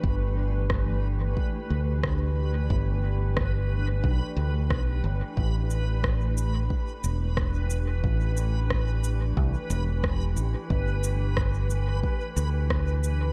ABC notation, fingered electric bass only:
X:1
M:4/4
L:1/8
Q:"Swing 16ths" 1/4=90
K:Gmix
V:1 name="Fingered electric bass" clef=bass
G,,,4 z D,,3 | G,,,4 B,,, D,, B,,, G,,, | A,,,4 z E,,,3 | A,,,4 C,, E,,,2 A,,, |
G,,,4 z D,,3 |]